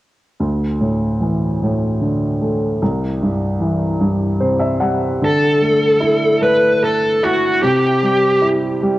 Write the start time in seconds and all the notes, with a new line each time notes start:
0.40 D2
0.81 A2
1.21 E3
1.63 A2
2.01 D3
2.41 A3
2.82 C2
3.22 G2
3.60 E3
4.01 G2
4.40 C3 C5
4.59 E5
4.80 G3 F#5
5.22 D3 A4
5.62 A3
6.00 E4
6.42 A3 B4
6.84 A4
7.23 E4 F#4
7.63 C3 G4
8.03 G3
8.42 E4
8.82 G3